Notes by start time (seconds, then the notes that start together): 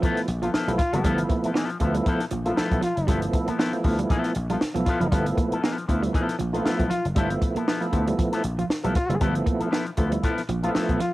Already playing: F3 A3 B3 E4
0.02 F3 B3 E4 A4, kick, closed hi-hat
0.17 snare, closed hi-hat
0.28 A#1, muted clean electric guitar stroke, closed hi-hat
0.42 F3 B3 E4 F4 A4, closed hi-hat
0.54 F3 B3 E4 A4, muted slap bass stroke, snare
0.68 B1 F3 G3 A3 B3 E4, closed hi-hat
0.78 F4, muted clean electric guitar stroke, kick, snare, closed hi-hat
0.93 F#1 F3 G3 A3 B3 E4 A4, closed hi-hat
1.04 G1 F3 G3 A3 B3 E4 A4, kick, closed hi-hat
1.18 muted clean electric guitar stroke, closed hi-hat
1.29 A#3, muted clean electric guitar stroke, kick, closed hi-hat
1.44 F3 B3 E4 A4, muted slap bass stroke, closed hi-hat
1.54 F3 B3 E4 A4, snare
1.70 muted clean electric guitar stroke, closed hi-hat
1.80 D2 F3 A3 B3 E4 A4, muted clean electric guitar stroke, kick, closed hi-hat
1.94 G3, muted clean electric guitar stroke, closed hi-hat
2.06 F3 B3 E4 A4, kick, closed hi-hat
2.20 snare, closed hi-hat
2.31 A#1 F3, muted clean electric guitar stroke, closed hi-hat
2.46 F3 A3 A#3 B3 E4 F4 A4, closed hi-hat
2.52 B3
2.56 F3 B3 E4 A4, muted slap bass stroke, snare
2.71 B1, kick, closed hi-hat
2.81 F3 F4, muted clean electric guitar stroke, snare, closed hi-hat
2.96 F#1, muted clean electric guitar stroke, closed hi-hat
3.07 G1 F3 G3 A3 B3 E4 A4, kick, closed hi-hat
3.21 muted clean electric guitar stroke, closed hi-hat
3.33 muted clean electric guitar stroke, kick, closed hi-hat
3.47 F3 A#3 B3 E4 A4, muted slap bass stroke, closed hi-hat
3.58 F3 B3 E4 A4, snare
3.73 F3 A3 B3 E4, muted clean electric guitar stroke, closed hi-hat
3.84 D2 F3 B3 E4 A4, muted clean electric guitar stroke, kick, open hi-hat
3.99 G3, muted clean electric guitar stroke, closed hi-hat
4.09 F3 B3 E4 A4, kick, closed hi-hat
4.24 snare, closed hi-hat
4.35 A#1, muted clean electric guitar stroke, closed hi-hat
4.50 F3 G3 B3 E4 F4 A4, closed hi-hat
4.61 muted slap bass stroke, snare
4.74 B1 F3 A3 B3 E4, muted clean electric guitar stroke, closed hi-hat
4.85 F3 B3 E4 F4 A4, muted clean electric guitar stroke, kick, snare, closed hi-hat
5.00 F#1 F3 A3 B3 E4, muted clean electric guitar stroke, closed hi-hat
5.12 G1 F3 G3 A3 B3 E4 A4, kick, closed hi-hat
5.26 muted clean electric guitar stroke, closed hi-hat
5.38 A#3, muted clean electric guitar stroke, kick, closed hi-hat
5.52 F3 B3 E4 A4, muted slap bass stroke, closed hi-hat
5.63 F3 B3 E4 A4, snare
5.78 muted clean electric guitar stroke, closed hi-hat
5.88 D2 F3 A3 B3 E4 A4, muted clean electric guitar stroke, kick, closed hi-hat
6.02 G3, muted clean electric guitar stroke, closed hi-hat
6.13 F3 B3 E4 A4, kick, closed hi-hat
6.29 snare, closed hi-hat
6.39 A#1 F3, muted clean electric guitar stroke, closed hi-hat
6.53 F3 A3 B3 D#4 E4 F4 A4, closed hi-hat
6.60 E4
6.65 F3 B3 E4 A4, muted slap bass stroke, snare
6.80 B1, kick, closed hi-hat
6.90 F3 F4, muted clean electric guitar stroke, snare, closed hi-hat
7.05 F#1, muted clean electric guitar stroke, closed hi-hat
7.15 G1 F3 G3 A3 B3 E4 A4, kick, closed hi-hat
7.30 muted clean electric guitar stroke, closed hi-hat
7.42 muted clean electric guitar stroke, kick, closed hi-hat
7.55 F3 A#3 B3 E4 A4, muted slap bass stroke, closed hi-hat
7.68 F3 B3 E4 A4, snare
7.81 F3 A3 B3 E4, muted clean electric guitar stroke, closed hi-hat
7.92 D2 F3 B3 E4 A4, muted clean electric guitar stroke, kick, closed hi-hat
8.07 G3, muted clean electric guitar stroke, closed hi-hat
8.18 F3, muted clean electric guitar stroke, kick, closed hi-hat
8.32 F3 B3 E4 A4, snare, closed hi-hat
8.43 A#1, muted clean electric guitar stroke, closed hi-hat
8.59 F3 F4, muted clean electric guitar stroke, closed hi-hat
8.69 muted slap bass stroke, muted clean electric guitar stroke, snare
8.84 B1 F3 G3 A3 B3 E4 A4, closed hi-hat
8.95 F4, muted clean electric guitar stroke, kick, snare, closed hi-hat
9.09 F#1 F3 G3 A3 B3 E4, muted clean electric guitar stroke, closed hi-hat
9.20 G1 F3 G3 A3 B3 E4 A4, kick, closed hi-hat
9.35 muted clean electric guitar stroke, closed hi-hat
9.46 A#3, muted clean electric guitar stroke, kick, closed hi-hat
9.60 F3 B3 E4 A4, muted slap bass stroke, closed hi-hat
9.71 F3 B3 E4 A4, snare
9.86 muted clean electric guitar stroke, closed hi-hat
9.97 D2 F3 A3 B3 E4 A4, muted clean electric guitar stroke, kick, closed hi-hat
10.11 G3, muted clean electric guitar stroke, closed hi-hat
10.23 F3 B3 E4 A4, kick, closed hi-hat
10.38 snare, closed hi-hat
10.49 A#1 F3, muted clean electric guitar stroke, closed hi-hat
10.63 F3 A3 B3 E4 F4 A4, closed hi-hat
10.75 F3 B3 E4 A4, muted slap bass stroke, snare
10.89 B1, kick, closed hi-hat
11.00 F3 F4, muted clean electric guitar stroke, snare, closed hi-hat